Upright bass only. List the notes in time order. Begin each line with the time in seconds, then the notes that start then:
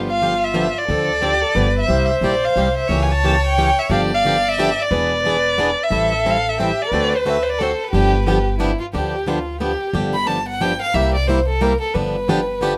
Already playing: G1
0.89 D2
1.55 G1
1.88 C2
2.21 A#1
2.56 C2
2.89 C#2
3.90 G1
4.91 E1
5.90 A1
6.92 D2
7.93 G1
8.94 D2
9.93 G1
10.94 C2
11.95 G1